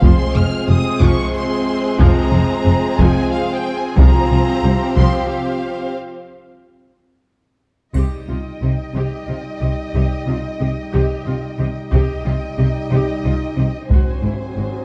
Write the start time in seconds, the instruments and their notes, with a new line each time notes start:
0.02 double bass section F1, cello section F2, trombone section C3 G#3, viola section F3 C4, french horn section C4 F4, violin section G#4 C5 C6, taiko
0.34 double bass section F1, cello section F2, viola section F3, violin section F6
0.67 double bass section F1, cello section F2, viola section C3, violin section D#6
1.00 double bass section F1, cello section F2, viola section F3, violin section C#6, taiko
1.35 violin section C6
1.98 double bass section F1, cello section F2, viola section F3, violin section A#5, taiko
2.32 double bass section F1, cello section F2, viola section F3
2.64 double bass section F1, cello section F2, viola section C3
2.98 double bass section F1, cello section F2, viola section F3, violin section G#5, taiko
3.31 violin section F5
3.54 violin section G5
3.76 violin section G#5
3.97 double bass section C2, cello section C2, timpani C3, trombone section C3 F3, viola section F3 C4, french horn section C4 F4, violin section C5 A#5, taiko
4.30 double bass section C2, cello section C2, viola section F3
4.63 double bass section C2, cello section C2, viola section C3, violin section G4
4.96 double bass section C2, cello section C2, viola section F3, violin section C6, taiko
5.28 violin section F5
7.93 double bass section C2, cello section C3, french horn section G3 D#4, viola section G4, violin section D#5 G5, taiko, triangle
8.28 double bass section C2, cello section C3, viola section F4
8.61 double bass section C2, cello section C3, viola section G4
8.94 double bass section C2, cello section C3, viola section G4
9.27 double bass section C2, cello section C3, viola section F4
9.60 double bass section C2, cello section C3, viola section G4
9.93 double bass section C2, cello section C3, viola section G4
10.26 double bass section C2, cello section C3, viola section F4
10.60 double bass section C2, cello section C3, viola section G4
10.92 double bass section C2, cello section C3, viola section G4
11.26 double bass section C2, cello section C3, viola section F4
11.58 double bass section C2, cello section C3, viola section G4
11.91 double bass section C2, cello section C3, french horn section G3 D#4, viola section G4, violin section D#5 G5, taiko
12.24 double bass section C2, cello section C3, viola section F4
12.58 double bass section C2, cello section C3, viola section G4
12.90 double bass section C2, cello section C3, viola section G4
13.24 double bass section C2, cello section C3, viola section F4
13.57 double bass section C2, cello section C3, viola section G4
13.87 double bass section G#1, cello section G#2, french horn section F#3 C4, viola section F#4, violin section C5 G#5, taiko
14.23 double bass section G#1, cello section G#2, viola section E4
14.56 double bass section G#1, cello section G#2, viola section F#4